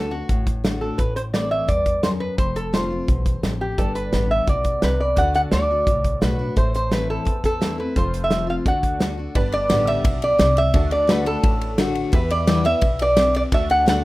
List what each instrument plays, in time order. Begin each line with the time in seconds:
Already playing: upright bass D2, steel-string acoustic guitar D3 A3 D4 F#4, resonator guitar played with a steel bar A4
0.11 steel-string acoustic guitar D4 F#4, resonator guitar played with a steel bar F#4
0.29 upright bass A1, steel-string acoustic guitar A2, kick, closed hi-hat
0.47 kick, closed hi-hat
0.64 steel-string acoustic guitar D3 A3 D4 F#4, snare, closed hi-hat
0.81 steel-string acoustic guitar D4 F#4, resonator guitar played with a steel bar A4
0.98 upright bass A1, steel-string acoustic guitar A2, resonator guitar played with a steel bar B4, kick, closed hi-hat
1.16 resonator guitar played with a steel bar C5, closed hi-hat
1.34 steel-string acoustic guitar E3 A3 C4 E4, resonator guitar played with a steel bar D5, snare, closed hi-hat
1.51 resonator guitar played with a steel bar E5
1.68 upright bass E2, steel-string acoustic guitar G2, resonator guitar played with a steel bar D5, kick, closed hi-hat
1.86 kick, closed hi-hat
2.03 steel-string acoustic guitar F#2, resonator guitar played with a steel bar C5, snare, closed hi-hat
2.20 resonator guitar played with a steel bar B4
2.38 upright bass F1, steel-string acoustic guitar F2, resonator guitar played with a steel bar C5, kick, closed hi-hat
2.56 resonator guitar played with a steel bar A4, closed hi-hat
2.73 steel-string acoustic guitar F3 A3 C4 F4, resonator guitar played with a steel bar C5, snare, closed hi-hat
2.90 steel-string acoustic guitar C4 F4
3.08 upright bass B1, steel-string acoustic guitar E2, kick, closed hi-hat
3.26 kick, closed hi-hat
3.43 upright bass A1, steel-string acoustic guitar F2, snare, closed hi-hat
3.61 resonator guitar played with a steel bar G4
3.78 upright bass G1, steel-string acoustic guitar G2, honky-tonk piano G4 B4 D5, resonator guitar played with a steel bar A4, kick, closed hi-hat
3.95 resonator guitar played with a steel bar B4, closed hi-hat
4.12 upright bass A1, steel-string acoustic guitar D3 G3 B3 G4, snare, closed hi-hat
4.31 resonator guitar played with a steel bar E5
4.47 upright bass B1, steel-string acoustic guitar B2, resonator guitar played with a steel bar D5, kick, closed hi-hat
4.64 kick, closed hi-hat
4.82 upright bass C2, steel-string acoustic guitar C3, resonator guitar played with a steel bar B4, snare, closed hi-hat
5.00 resonator guitar played with a steel bar D5
5.16 upright bass D2, steel-string acoustic guitar D3, honky-tonk piano F#4 A4 D5, resonator guitar played with a steel bar F#5, kick, closed hi-hat
5.34 resonator guitar played with a steel bar F#5, closed hi-hat
5.52 upright bass D2, steel-string acoustic guitar D3 A3 D4 F#4, resonator guitar played with a steel bar D5, snare, closed hi-hat
5.71 steel-string acoustic guitar D4 F#4
5.87 upright bass C2, steel-string acoustic guitar A2, kick, closed hi-hat
6.04 kick, closed hi-hat
6.21 upright bass B1, steel-string acoustic guitar D3 A3 D4 F#4, resonator guitar played with a steel bar B4, snare, closed hi-hat
6.39 steel-string acoustic guitar D4 F#4
6.56 upright bass A1, steel-string acoustic guitar A2, honky-tonk piano E4 A4 C5, resonator guitar played with a steel bar C5, kick, closed hi-hat
6.75 resonator guitar played with a steel bar C5, closed hi-hat
6.91 steel-string acoustic guitar E3 A3 C4 E4, resonator guitar played with a steel bar B4, snare, closed hi-hat
7.10 resonator guitar played with a steel bar A4
7.25 steel-string acoustic guitar E2, upright bass E2, kick, closed hi-hat
7.44 resonator guitar played with a steel bar A4, kick, closed hi-hat
7.61 steel-string acoustic guitar E3 A3 C4 E4, snare, closed hi-hat
7.78 steel-string acoustic guitar C4 E4, resonator guitar played with a steel bar B4
7.96 upright bass F1, steel-string acoustic guitar F2, honky-tonk piano F4 A4 C5, resonator guitar played with a steel bar C5, kick, closed hi-hat
8.14 closed hi-hat
8.24 resonator guitar played with a steel bar E5
8.30 steel-string acoustic guitar F3 A3 C4 F4, snare, closed hi-hat
8.47 steel-string acoustic guitar C4 F4, resonator guitar played with a steel bar F5
8.65 upright bass D2, steel-string acoustic guitar D3, honky-tonk piano F#4 A4 D5, resonator guitar played with a steel bar F#5, kick, closed hi-hat
8.83 kick, closed hi-hat
9.00 steel-string acoustic guitar D3 A3 D4 F#4, snare, closed hi-hat
9.17 steel-string acoustic guitar D4 F#4
9.35 upright bass G1, steel-string acoustic guitar G2, honky-tonk piano D4 G4 B4 D5, resonator guitar played with a steel bar B4, kick, ride
9.52 resonator guitar played with a steel bar D5, ride
9.69 upright bass A1, steel-string acoustic guitar D3 G3 B3 G4, snare, ride
9.87 resonator guitar played with a steel bar E5, ride
10.04 upright bass B1, steel-string acoustic guitar B2, kick, ride
10.22 resonator guitar played with a steel bar D5, ride
10.39 upright bass C2, steel-string acoustic guitar C3, snare, ride
10.57 resonator guitar played with a steel bar E5, ride
10.74 upright bass D2, steel-string acoustic guitar D3, honky-tonk piano D4 F#4 A4 D5, kick, ride
10.91 resonator guitar played with a steel bar D5, ride
11.07 steel-string acoustic guitar D3 A3 D4 F#4, resonator guitar played with a steel bar B4, snare, ride
11.25 steel-string acoustic guitar D4 F#4, resonator guitar played with a steel bar A4, ride
11.43 upright bass A1, steel-string acoustic guitar A2, kick, ride
11.61 ride
11.78 steel-string acoustic guitar D3 A3 D4 F#4, snare, ride
11.95 ride
12.12 steel-string acoustic guitar E2, upright bass E2, honky-tonk piano E4 G4 B4 E5, resonator guitar played with a steel bar B4, kick, ride
12.30 resonator guitar played with a steel bar D5, ride
12.47 steel-string acoustic guitar E3 G3 B3 E4, snare, ride
12.63 steel-string acoustic guitar B3 E4, resonator guitar played with a steel bar E5, ride
12.81 upright bass B1, steel-string acoustic guitar B2, kick, ride
12.99 honky-tonk piano E4 G4 B4 E5, resonator guitar played with a steel bar D5, ride
13.16 steel-string acoustic guitar C4, snare, ride
13.35 resonator guitar played with a steel bar D5, ride
13.52 upright bass D2, steel-string acoustic guitar D3, honky-tonk piano D4 F#4 A4 D5, resonator guitar played with a steel bar E5, kick, ride
13.70 resonator guitar played with a steel bar F#5, ride
13.86 steel-string acoustic guitar D3 A3 D4 F#4, resonator guitar played with a steel bar F#5, snare, ride